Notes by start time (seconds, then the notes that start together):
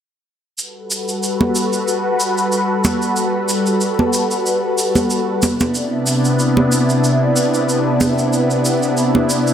0.58 G3 F#4 A4 B4, shaker
0.91 shaker
1.08 shaker
1.23 shaker
1.41 high conga
1.55 shaker
1.73 shaker
1.88 shaker
2.20 shaker
2.38 shaker
2.52 shaker
2.85 high conga, shaker
3.02 shaker
3.16 shaker
3.49 shaker
3.66 shaker
3.81 shaker
3.99 high conga
4.13 shaker
4.31 shaker
4.46 shaker
4.78 shaker
4.95 high conga, shaker
5.10 shaker
5.42 C3 B3 D4 E4, high conga, shaker
5.60 high conga, shaker
5.75 shaker
6.07 shaker
6.25 shaker
6.39 shaker
6.57 high conga
6.72 shaker
6.90 shaker
7.04 shaker
7.36 shaker
7.54 shaker
7.69 shaker
8.01 high conga, shaker
8.18 shaker
8.33 shaker
8.51 shaker
8.65 shaker
8.83 shaker
8.97 shaker
9.15 high conga
9.30 shaker
9.47 shaker